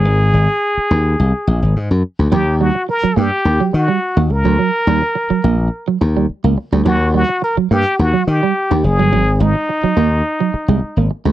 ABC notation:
X:1
M:4/4
L:1/16
Q:1/4=106
K:Ab
V:1 name="Muted trumpet"
A12- A2 z2 | G2 ^F2 B2 G4 F4 B2- | B8- B2 z6 | ^F2 F2 B2 G2 F2 G4 A2- |
A2 E12 z2 |]
V:2 name="Clean electric guitar" clef=bass
z16 | ^F, z G, z2 F, B, z2 F, z G, z B, z F, | ^F, z G, z2 F, B, z2 F, z G, z B, z G, | ^F, z G, z2 F, B, z2 F, z G, z B, z F, |
_G, z A, z2 G, B, z2 G, z A, z B, z A, |]
V:3 name="Slap bass" clef=bass
A,,,2 A,,, z3 E,,2 C,, z B,,, A,,, A,, _G,, z =D,, | E,,3 z3 G,, z E,, z E, z2 E,, D,, =D,, | z2 E,, z3 B,,,2 z2 E,,2 z D,, z =D,, | E,,3 z3 G,, z E,, z E, z2 E,, ^F,,, G,,, |
A,,,2 A,,, z3 E,,2 z3 C,, z A,,, z =D,, |]